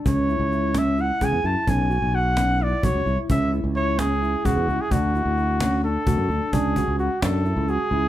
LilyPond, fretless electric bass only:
\new Staff \with { instrumentName = "Fretless electric bass" } { \clef bass \time 7/8 \key d \lydian \tempo 4 = 130 cis,8. cis,4.~ cis,16 cis,16 e,16 fis,16 r16 | b,,8. b,,4.~ b,,16 b,,16 cis,16 bis,,16 r16 | cis,8. cis,4.~ cis,16 cis,16 e,16 cis,16 r16 | d,8. d,4.~ d,16 d,16 fis,16 d,16 r16 |
cis,8. cis,8 r16 fis,8. cis,8 r16 cis,8 | }